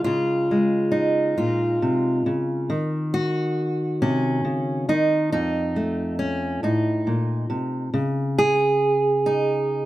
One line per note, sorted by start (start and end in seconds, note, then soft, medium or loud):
0.00 0.50 G#3 soft
0.00 0.49 D#4 medium
0.04 1.38 C#3 medium
0.04 1.36 F4 medium
0.51 2.70 G#3 soft
0.92 2.24 D#4 medium
1.38 1.82 A#2 medium
1.38 2.69 F4 medium
1.82 2.26 C3 medium
2.26 2.70 C#3 medium
2.70 4.88 D#3 medium
3.14 4.88 F#4 loud
4.02 4.44 C3 medium
4.02 4.89 C#4 medium
4.45 4.88 C#3 medium
4.89 5.32 D#3 medium
4.89 5.31 D#4 medium
5.32 6.63 F2 medium
5.32 6.18 D#4 medium
5.76 7.89 A3 soft
6.19 6.63 C#4 medium
6.63 7.07 A2 medium
6.63 7.95 D#4 medium
7.07 7.49 A#2 medium
7.50 7.93 C3 medium
7.94 9.86 C#3 medium
8.38 9.86 G#4 loud
9.26 9.86 D#4 medium